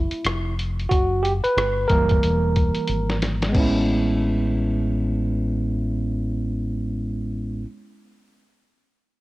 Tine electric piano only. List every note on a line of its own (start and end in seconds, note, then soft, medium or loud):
0.00 0.53 E4 medium
0.89 1.24 F#4 medium
1.23 1.32 G4 medium
1.44 1.86 B4 medium
1.88 3.50 E3 medium
1.88 3.51 G3 soft
1.88 3.51 A#3 medium
1.88 3.17 A#4 medium
3.49 7.61 G#3 medium
3.49 7.63 B3 medium
3.56 7.65 C#4 medium
3.56 7.67 E4 medium